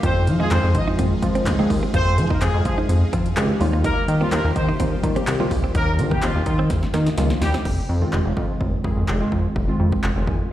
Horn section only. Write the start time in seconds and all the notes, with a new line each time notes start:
0.03 C4 C5
0.40 G#3 G#4
0.51 C4 C5
0.75 D#4 D#5
1.94 C4 C5
2.30 A#3 A#4
2.42 G#3 G#4
2.65 G#3 G#4
3.84 A#3 A#4
4.21 F3 F4
4.32 A#3 A#4
4.56 C4 C5
5.75 A#3 A#4
6.12 G3 G4
6.23 F3 F4
6.46 F3 F4
7.42 G3 G4